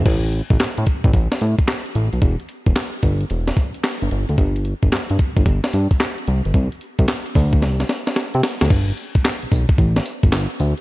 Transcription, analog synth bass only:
X:1
M:4/4
L:1/16
Q:"Swing 16ths" 1/4=111
K:Gmix
V:1 name="Analog synth bass" clef=bass
A,,,3 A,,, z A,, z A,,, A,,, z A,, z3 A,,, B,,, | E,,, z2 E,,, z2 G,,,2 E,,,2 z3 G,,, G,,, D,, | G,,,3 G,,, G,, G,, z G,,, G,,, z G,, z3 C,, G,,, | C,, z2 C,, z2 D,,2 C,,2 z3 C, z D,, |
G,,,2 z B,,, z B,,, B,,, z A,,,2 z G,,, G,,, z D,, z |]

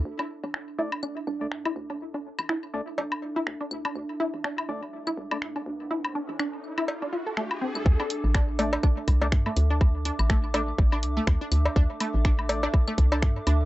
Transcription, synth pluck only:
X:1
M:4/4
L:1/16
Q:"Swing 16ths" 1/4=123
K:Cmix
V:1 name="Synth pluck"
z D z D z2 E z D z D z2 E z D | z D z2 E z D z D z2 E z D z D | z2 E z D z D z2 E z D z D z2 | E z D z D z2 E z D F A A, z C z |
z D z2 D z A, z D z2 D z A, z D | z2 D z A, z D z2 D z A, z D z2 | D z A, z D z2 D z A, z D z2 D z |]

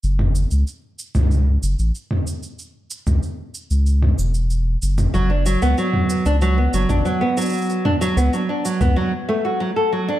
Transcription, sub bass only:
X:1
M:4/4
L:1/16
Q:1/4=94
K:F#m
V:1 name="Sub bass" clef=bass
F,,,3 C,, z3 C,,3 F,,, A,,, z4 | z3 C,, z3 C,,3 E,,,4 F,,,2 | F,,,3 C,, z3 C,,3 F,,, A,,, z4 | z3 C,, z3 C,, z8 |]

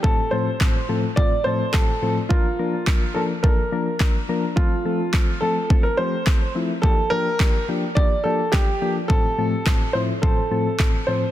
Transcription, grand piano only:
X:1
M:4/4
L:1/16
Q:1/4=106
K:F
V:1 name="Grand piano"
A2 c4 z2 d2 c2 A3 z | F6 A2 B6 z2 | F6 A3 B c4 z2 | A2 B4 z2 d2 A2 G3 z |
A6 c2 A6 c2 |]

